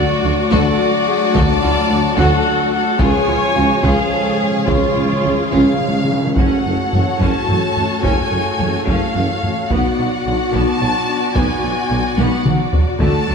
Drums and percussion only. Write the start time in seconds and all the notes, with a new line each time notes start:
0.51 taiko
1.35 taiko
2.17 taiko
2.99 taiko
3.83 taiko
4.68 taiko
5.52 taiko
6.37 taiko
6.93 taiko low-mid
7.21 taiko
7.49 taiko low-mid
7.76 taiko low-mid
8.04 taiko
8.60 taiko low-mid
8.87 taiko
9.15 taiko low-mid
9.43 taiko low-mid
9.71 taiko
10.53 taiko
11.36 taiko
12.18 taiko high
12.45 taiko mid
12.73 taiko low
13.00 taiko